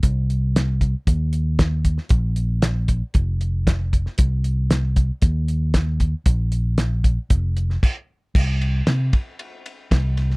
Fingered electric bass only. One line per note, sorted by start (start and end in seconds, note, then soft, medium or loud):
0.03 0.94 C2 loud
1.07 1.97 D#2 medium
2.11 3.01 A#1 medium
3.15 4.06 F1 medium
4.19 5.09 C2 medium
5.23 6.13 D#2 medium
6.26 7.17 A#1 loud
7.31 7.76 F1 medium
8.36 8.81 C2 loud
8.87 9.10 C3 loud
9.92 10.37 C2 medium